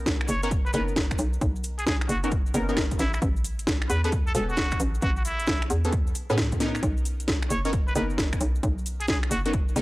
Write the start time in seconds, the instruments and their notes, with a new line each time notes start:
Already playing: fm bass B1, synth stab B3 C#4 D#4 A#4
0.06 kick, snare, cabasa
0.21 finger snap, closed hi-hat
0.28 fm bass F#1, muted trumpet C#5, open hi-hat, cabasa
0.43 synth stab B3 C#4 D#4 A#4, muted trumpet C#5, closed hi-hat, cabasa
0.51 kick, closed hi-hat, cabasa
0.66 muted trumpet B4, cabasa
0.73 fm bass F#1, synth stab B3 C#4 D#4 A#4, muted trumpet B4, open hi-hat, cabasa
0.88 cabasa
0.96 kick, snare, cabasa
1.11 finger snap, kick, closed hi-hat, cabasa
1.18 fm bass B1, open hi-hat, cabasa
1.33 cabasa
1.41 fm bass B1, kick, closed hi-hat, cabasa
1.56 cabasa
1.64 open hi-hat, cabasa
1.79 muted trumpet G#4, closed hi-hat, cabasa
1.87 muted trumpet G#4, kick, snare, cabasa
2.01 finger snap, closed hi-hat
2.09 fm bass F#1, muted trumpet F#4, open hi-hat, cabasa
2.23 synth stab B3 C#4 D#4 A#4, muted trumpet F#4, closed hi-hat, cabasa
2.31 kick, closed hi-hat, cabasa
2.46 cabasa
2.54 fm bass F#1, synth stab B3 C#4 D#4 A#4, open hi-hat, cabasa
2.69 synth stab B3 C#4 D#4 A#4, cabasa
2.77 finger snap, kick, snare, cabasa
2.91 kick, closed hi-hat, cabasa
2.99 fm bass A1, muted trumpet E4, snare, open hi-hat, cabasa
3.13 muted trumpet E4, finger snap, cabasa
3.22 fm bass A1, kick, closed hi-hat, cabasa
3.36 cabasa
3.44 open hi-hat, cabasa
3.59 closed hi-hat, cabasa
3.67 kick, snare, cabasa
3.82 finger snap, closed hi-hat
3.90 fm bass E2, muted trumpet B4, open hi-hat, cabasa
4.04 synth stab B3 C#4 G#4 A4, muted trumpet B4, closed hi-hat, cabasa
4.12 kick, closed hi-hat, cabasa
4.27 muted trumpet A4, cabasa
4.35 fm bass E1, synth stab B3 C#4 G#4 A4, muted trumpet A4, open hi-hat, cabasa
4.49 muted trumpet F#4, cabasa
4.57 kick, snare, cabasa
4.71 finger snap, kick, closed hi-hat, cabasa
4.80 fm bass A1, open hi-hat, cabasa
4.95 cabasa
5.02 fm bass A1, muted trumpet F#4, kick, closed hi-hat, cabasa
5.16 muted trumpet F#4, cabasa
5.25 muted trumpet E4, open hi-hat, cabasa
5.40 closed hi-hat, cabasa
5.47 kick, snare, cabasa
5.62 finger snap, closed hi-hat
5.70 fm bass E2, open hi-hat, cabasa
5.84 synth stab B3 C#4 G#4 A4, closed hi-hat, cabasa
5.92 kick, closed hi-hat, cabasa
6.07 cabasa
6.15 open hi-hat, cabasa
6.30 fm bass A2, synth stab B3 C#4 G#4 A4, cabasa
6.38 finger snap, kick, snare, cabasa
6.52 kick, closed hi-hat, cabasa
6.60 synth stab B3 C#4 D#4 A#4, snare, open hi-hat, cabasa
6.75 finger snap, cabasa
6.83 fm bass B1, kick, closed hi-hat, cabasa
6.97 cabasa
7.05 open hi-hat, cabasa
7.20 closed hi-hat, cabasa
7.28 kick, snare, cabasa
7.43 finger snap, closed hi-hat
7.50 fm bass F#1, muted trumpet C#5, open hi-hat, cabasa
7.65 synth stab B3 C#4 D#4 A#4, muted trumpet C#5, closed hi-hat, cabasa
7.73 kick, closed hi-hat, cabasa
7.88 muted trumpet B4, cabasa
7.95 fm bass F#1, synth stab B3 C#4 D#4 A#4, muted trumpet B4, open hi-hat, cabasa
8.10 cabasa
8.18 kick, snare, cabasa
8.33 finger snap, kick, closed hi-hat, cabasa
8.41 fm bass B1, open hi-hat, cabasa
8.55 cabasa
8.63 fm bass B1, kick, closed hi-hat, cabasa
8.78 cabasa
8.86 open hi-hat, cabasa
9.01 muted trumpet G#4, closed hi-hat, cabasa
9.08 muted trumpet G#4, kick, snare, cabasa
9.23 finger snap, closed hi-hat
9.31 fm bass F#1, muted trumpet F#4, open hi-hat, cabasa
9.46 synth stab B3 C#4 D#4 A#4, muted trumpet F#4, closed hi-hat, cabasa
9.53 kick, closed hi-hat, cabasa
9.68 cabasa
9.76 fm bass F#1, synth stab B3 C#4 D#4 A#4, open hi-hat, cabasa